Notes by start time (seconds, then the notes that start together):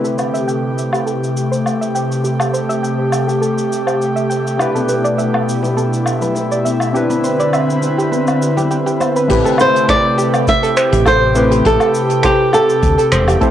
Already playing: C3 A3 C4 E4 G4 B4
0.04 A4, cabasa
0.18 C5, cabasa, low woodblock
0.34 E5, cabasa
0.48 G5, cabasa
0.78 cabasa
0.93 G4, cabasa, low woodblock
1.06 A4, cabasa
1.24 cabasa
1.37 cabasa
1.51 C5, cabasa
1.66 cabasa, low woodblock
1.81 E5, cabasa
1.95 G5, cabasa
2.12 cabasa
2.24 G4, cabasa
2.40 A4, cabasa, low woodblock
2.53 C5, cabasa
2.69 E5, cabasa
2.83 G5, cabasa
3.12 cabasa, low woodblock
3.28 G4, cabasa
3.41 A4, cabasa
3.58 cabasa
3.73 cabasa
3.87 C5, cabasa, low woodblock
4.02 cabasa
4.16 E5, cabasa
4.30 G5, cabasa
4.47 cabasa
4.58 B2 A3 D4 E4 G4 B4, cabasa, low woodblock
4.75 A4, high conga, cabasa
4.89 B4, high bongo, cabasa
5.04 D5, cabasa
5.18 E5, high bongo, cabasa
5.34 high conga, low woodblock
5.49 cabasa
5.63 G4, high bongo, cabasa
5.77 A4, high conga, cabasa
5.92 high bongo, cabasa
6.06 cabasa, low woodblock
6.21 B4, high conga, low conga, cabasa
6.35 high bongo, cabasa
6.52 D5, cabasa
6.65 E5, high bongo, high conga, cabasa
6.80 cabasa, low woodblock
6.93 D3 C4 D4 E4 G4 B4, cabasa
7.10 B4, high bongo, high conga, cabasa
7.24 C5, cabasa
7.39 D5, high bongo, cabasa
7.53 E5, cabasa, low woodblock
7.69 high conga, cabasa
7.82 high bongo, cabasa
7.98 G4, cabasa
8.12 B4, high bongo, high conga, cabasa
8.27 cabasa, low woodblock
8.42 cabasa
8.57 G4, high bongo, high conga, low conga, cabasa
8.71 G4, cabasa
8.86 G4, high bongo, cabasa
9.00 C5, high conga, cabasa, low woodblock
9.16 B4, cabasa
9.28 A1 C3 A3 C4 E4 G4 B4, kick, closed hi-hat, crash, cabasa
9.45 A4, cabasa
9.58 C5, cabasa, low woodblock
9.76 closed hi-hat, cabasa
9.88 C5 D5, finger snap, kick, closed hi-hat, cabasa
10.18 G4, cabasa
10.34 cabasa, low woodblock
10.47 E5, kick, closed hi-hat, cabasa
10.63 A4, closed hi-hat, cabasa
10.77 C5, finger snap, cabasa
10.92 A1 G4, closed hi-hat, cabasa
11.06 A4 C5, kick, closed hi-hat, cabasa, low woodblock
11.35 A3 C4 E4 G4 B4 C5, cabasa
11.51 G4, closed hi-hat, cabasa
11.63 A1 A3 C4 E4 G4 A4 B4, kick, closed hi-hat, cabasa
11.80 A4, cabasa, low woodblock
11.94 cabasa
12.10 closed hi-hat, cabasa
12.23 G4 C5, finger snap, kick, closed hi-hat, cabasa
12.53 G4 A4, cabasa, low woodblock
12.70 cabasa
12.83 D2, kick, closed hi-hat, cabasa
12.98 A4, closed hi-hat, cabasa
13.12 E1 C5, finger snap, cabasa
13.28 G4, closed hi-hat, cabasa, low woodblock
13.41 A3 C4 E4 G4 A4 C5, kick, closed hi-hat, cabasa